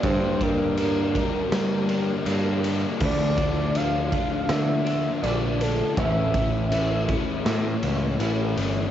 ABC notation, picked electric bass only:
X:1
M:4/4
L:1/8
Q:1/4=81
K:Dm
V:1 name="Picked electric bass" clef=bass
G,,4 G,2 G,,2 | D,,4 D,2 B,,,2 | A,,,4 A,, ^C,, A,,, G,,, |]